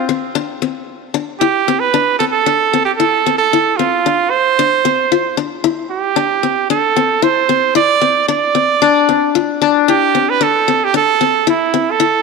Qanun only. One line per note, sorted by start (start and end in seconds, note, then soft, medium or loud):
0.09 0.29 C4 medium
0.35 0.56 D4 medium
0.62 0.82 C4 medium
1.14 1.35 D4 medium
1.41 1.62 E4 medium
1.68 1.88 C4 medium
1.94 2.14 D4 medium
2.20 2.41 C4 medium
2.46 2.67 D4 medium
2.73 2.94 C4 medium
3.00 3.20 E4 medium
3.26 3.47 C4 medium
3.53 3.74 E4 medium
3.79 4.00 C4 medium
4.06 4.27 D4 medium
4.59 4.80 D4 medium
4.85 5.06 C4 medium
5.12 5.32 F4 medium
5.37 5.58 D4 medium
5.64 5.85 E4 medium
6.16 6.37 D4 medium
6.43 6.64 C4 medium
6.70 6.91 D4 medium
6.96 7.17 C4 medium
7.22 7.44 E4 medium
7.49 7.70 C4 medium
7.75 7.96 E4 medium
8.01 8.23 C4 medium
8.28 8.50 D4 medium
8.55 8.76 C4 medium
8.82 9.61 D4 medium
9.09 9.30 C4 medium
9.35 9.56 F4 medium
9.62 10.40 D4 medium
9.88 10.09 E4 medium
10.15 10.36 C4 medium
10.41 10.62 D4 medium
10.68 10.89 C4 medium
10.94 11.15 D4 medium
11.21 11.42 C4 medium
11.47 11.68 E4 medium
11.74 11.95 C4 medium
12.00 12.21 E4 medium